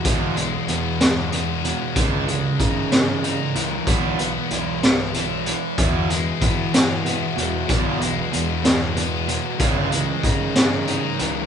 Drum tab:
HH |xxxxxx|xxxxxx|xxxxxx|xxxxxx|
SD |---o--|---o--|---o--|---o--|
BD |o-----|o-o---|o-----|o-o---|

HH |xxxxxx|xxxxxx|
SD |---o--|---o--|
BD |o-----|o-o---|